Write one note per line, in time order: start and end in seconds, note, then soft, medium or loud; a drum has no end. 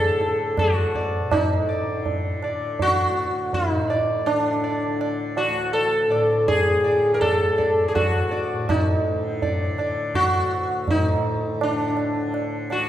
0.00 0.60 D2 medium
0.00 1.21 A2 medium
0.00 1.83 D3 medium
0.00 0.59 A4 medium
0.21 tabla te soft
0.57 3.07 D2 soft
0.57 1.34 F#4 medium
0.57 tabla na medium
0.57 tabla ge medium
0.95 1.29 D5 soft
0.95 tabla ge soft
1.21 3.67 A2 soft
1.31 2.39 D#4 medium
1.31 tabla na medium
1.31 tabla ge medium
1.69 2.03 D5 soft
1.83 2.45 D3 medium
2.06 tabla tin medium
2.06 tabla ge medium
2.43 4.27 D3 medium
2.43 2.77 D5 soft
2.43 tabla na medium
2.79 3.54 F#4 medium
2.79 tabla tin medium
2.79 tabla ge medium
3.07 5.46 D2 medium
3.53 4.26 D#4 medium
3.53 tabla tin medium
3.53 tabla ge medium
3.67 6.07 A2 soft
3.90 4.24 D5 soft
3.90 tabla na soft
4.26 4.86 D3 medium
4.26 4.96 D4 medium
4.26 tabla na medium
4.64 4.98 D5 soft
4.86 6.71 D3 soft
5.01 5.35 D5 soft
5.01 tabla na medium
5.37 5.72 F#4 medium
5.37 tabla na medium
5.46 7.91 D2 medium
5.73 6.48 A4 medium
5.73 tabla tin medium
6.08 8.52 A2 medium
6.08 6.45 D5 soft
6.12 tabla na medium
6.48 7.14 G#4 medium
6.48 tabla tin medium
6.48 tabla ge medium
6.71 7.30 D3 medium
6.84 7.19 D5 soft
7.14 7.20 A#4 medium
7.21 7.88 A4 medium
7.21 tabla na medium
7.21 tabla ge medium
7.30 9.15 D3 medium
7.58 7.92 D5 soft
7.58 tabla ge soft
7.88 10.35 D2 medium
7.88 7.95 G#4 medium
7.95 8.65 F#4 medium
7.95 tabla na medium
7.95 tabla ge medium
8.31 8.66 D5 soft
8.31 tabla te medium
8.53 10.94 A2 soft
8.69 9.75 D#4 medium
8.69 tabla na medium
8.69 tabla ge medium
9.15 9.75 D3 medium
9.42 9.76 D5 soft
9.42 tabla tin medium
9.42 tabla ge medium
9.75 11.55 D3 medium
9.75 tabla na medium
9.79 10.13 D5 soft
10.14 10.90 F#4 medium
10.14 tabla tin medium
10.14 tabla ge medium
10.35 12.75 D2 medium
10.88 11.63 D#4 medium
10.88 tabla tin medium
10.88 tabla ge medium
10.94 12.89 A2 medium
11.55 12.15 D3 medium
11.61 12.31 D4 medium
11.61 tabla na medium
11.97 tabla na medium
12.15 12.89 D3 medium
12.34 tabla na medium
12.70 12.89 F#4 medium
12.70 12.89 D5 soft
12.70 tabla na medium
12.75 12.89 D2 medium